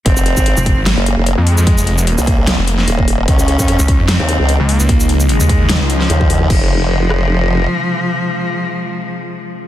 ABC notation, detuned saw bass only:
X:1
M:4/4
L:1/16
Q:"Swing 16ths" 1/4=149
K:Fm
V:1 name="Detuned saw bass" clef=bass
z4 z F,,,2 A,,,2 z4 F,,2 F,,- | F,, F,,,4 z4 F,,,3 z4 | z4 z D,,2 F,,2 z4 D,,2 D,,- | D,, D,,4 E,,4 D,,3 z4 |
z16 | z16 |]